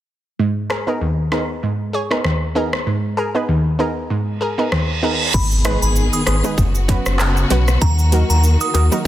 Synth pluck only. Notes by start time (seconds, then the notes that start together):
0.39 G#2
0.70 G#4 A#4
0.87 B3 D#4 G#4 A#4
1.01 D#2
1.32 B3 D#4 G#4 A#4
1.63 G#2
1.93 G#4 C#5
2.11 B3 D#4 G#4 A#4
2.25 D#2
2.55 B3 D#4 G#4 A#4
2.87 G#2
3.17 G#4 A#4
3.35 B3 D#4 G#4 B4
3.48 D#2
3.79 B3 D#4 G#4 A#4
4.10 G#2
4.41 G#4 A#4
4.58 B3 D#4 G#4 A#4
4.72 D#2
5.03 B3 D#4 G#4 A#4
5.64 G#3 B3 D#4 G#4 B4
6.26 G#4 B4
6.44 G#3 B3 D#4 G#4 B4
6.88 F#3 B3 C#4 F#4 B4
7.50 F#3 B3 C#4 F#4 B4
8.12 F#3 A#3 D#4 F#4 A#4
8.74 F#4 A#4
8.91 F#3 A#3 D#4 F#4 A#4